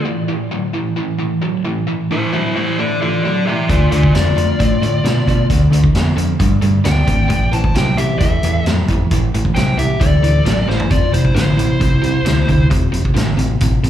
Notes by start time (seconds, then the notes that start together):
0.05 A2 E3
0.28 A2 E3
0.51 A2 F#3
0.73 A2 E3
0.96 A2 E3
1.19 A2 E3
1.42 A2 F#3
1.65 A2 E3
1.87 A2 E3
2.11 A2 E3 E4 C5
2.33 A2 F#3 E4 C5
2.55 A2 E3 E4 C5
2.79 A2 E3 A4 D5
3.02 A2 E3 F4 A4 D5
3.24 A2 F#3 A4 D5
3.46 A2 E3 G4 E5
3.69 D2 D3 A3 F4 D5, kick, closed hi-hat
3.90 D2 D3 A3 F4 D5, closed hi-hat
4.03 kick
4.15 F2 D3 B3 F4 D5, snare, closed hi-hat
4.37 F2 D3 A3, closed hi-hat
4.59 A2 D3 A3, kick, closed hi-hat
4.81 A2 D3 A3, closed hi-hat
5.04 B2 D3 B3, snare, closed hi-hat
5.27 B2 D3 A3, kick, closed hi-hat
5.50 D2 D3 A3, kick, closed hi-hat
5.71 D2 D3 A3, closed hi-hat
5.84 kick
5.94 F2 D3 B3, snare, closed hi-hat
6.16 F2 D3 A3, closed hi-hat
6.40 G2 D3 A3, kick, closed hi-hat
6.62 G2 D3 A3, closed hi-hat
6.84 D2 D3 B3 D5 G5, snare, closed hi-hat
7.07 G#1 D3 A3, kick, closed hi-hat
7.29 A1 A2 E3, kick, closed hi-hat
7.52 A1 A2 E3 C5 A5, closed hi-hat
7.64 kick
7.75 C2 A2 F#3 C5 G5, snare, closed hi-hat
7.97 C2 A2 E3 G4 E5, closed hi-hat
8.19 E2 A2 E3 A4 E5, kick, closed hi-hat
8.43 E2 A2 E3, closed hi-hat
8.66 F2 A2 F#3, snare, closed hi-hat
8.88 F2 A2 E3, kick, closed hi-hat
9.11 A1 A2 E3, kick, closed hi-hat
9.34 A1 A2 E3, closed hi-hat
9.45 kick
9.55 C2 A2 F#3 C5 G5, snare, closed hi-hat
9.77 C2 A2 E3 G4 E5, closed hi-hat
10.00 D2 A2 E3 A4 D5, kick, closed hi-hat
10.23 D2 A2 E3, closed hi-hat
10.45 A1 A2 F#3, snare, closed hi-hat
10.68 A1 A2 E3 E4 C5, snare
10.80 floor tom
10.90 F1 F2 C3 F4 D5, kick, closed hi-hat
11.12 F1 F2 C3 E4 C5, closed hi-hat
11.25 kick
11.35 A1 F2 D3 E4 C5, snare, closed hi-hat
11.57 A1 F2 C3, closed hi-hat
11.80 C2 F2 C3, kick, closed hi-hat
12.02 C2 F2 C3, closed hi-hat
12.25 D2 F2 D3, snare, closed hi-hat
12.48 D2 F2 C3, kick, closed hi-hat
12.70 F1 F2 C3, kick, closed hi-hat
12.92 F1 F2 C3, closed hi-hat
13.05 kick
13.14 A1 F2 D3, snare, closed hi-hat
13.37 A1 F2 C3, closed hi-hat
13.61 A1 F2 C3, kick, closed hi-hat
13.83 A1 F2 C3, closed hi-hat